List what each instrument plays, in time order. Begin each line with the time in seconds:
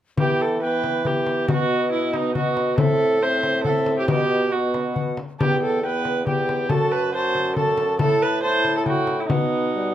0.18 bassoon E3, trombone B3, viola G4, recorder G5, frame drum
0.42 viola A4
0.61 trombone B3, viola B4, recorder G5
0.84 frame drum
1.05 trombone B3, viola G4, recorder G5, frame drum
1.27 frame drum
1.48 bassoon B2, trombone B3, viola F#4, recorder D#5, frame drum
1.92 viola E4
2.14 viola D#4, frame drum
2.35 trombone B3, viola F#4, recorder D#5, frame drum
2.57 frame drum
2.78 bassoon A2, trombone C4, viola A4, recorder E5, frame drum
3.22 trombone C4, viola C5, recorder E5
3.43 frame drum
3.64 trombone C4, viola A4, recorder F#5, frame drum
3.69 recorder E5
3.86 frame drum
3.99 viola G4
4.08 bassoon B2, trombone B3, viola G4, recorder D#5, frame drum
4.51 trombone B3, viola F#4, recorder D#5
4.74 frame drum
4.94 recorder F#5, frame drum
5.17 frame drum
5.39 bassoon E2, trombone B3, viola G4, recorder G5 A5, frame drum
5.63 viola A4
5.83 trombone B3, viola B4, recorder G5
6.05 frame drum
6.26 trombone B3, viola G4, recorder G5, frame drum
6.49 frame drum
6.69 bassoon F#2, trombone F#4, viola A4, recorder A5, frame drum
6.92 viola B4
7.14 trombone F#4, viola C5, recorder A5
7.35 frame drum
7.56 trombone F#4, viola A4, recorder A5, frame drum
7.78 frame drum
7.98 bassoon A2, trombone E4, viola A4, recorder A5, frame drum
8.22 viola B4
8.42 trombone E4, viola C5, recorder A5
8.65 frame drum
8.77 viola A4
8.86 viola F#4, recorder G5, frame drum
9.07 frame drum
9.20 viola E4
9.29 bassoon B2, trombone B3, viola D#4, recorder F#5, frame drum
9.75 trombone G3